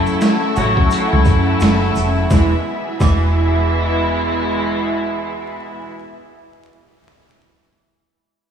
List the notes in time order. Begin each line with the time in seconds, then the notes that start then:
Already playing: C#3 F#3 A3 E4 A4 F#5 C#6 E6
0.06 shaker
0.21 snare, closed hi-hat, shaker
0.56 A1 C#3 F#3 A3 E4 F#4, shaker
0.77 kick
0.90 C#3 F#3 A3 E4, closed hi-hat, shaker
1.13 C#2
1.25 F#2, kick, closed hi-hat, shaker
1.27 shaker
1.60 F#1, snare, closed hi-hat, shaker
1.95 F1, shaker
2.30 E1 B2 E3 G#3 B3 E4 G#4 E5, kick, snare, shaker
3.00 E1 B2 E3 G#3 E4, kick, snare, shaker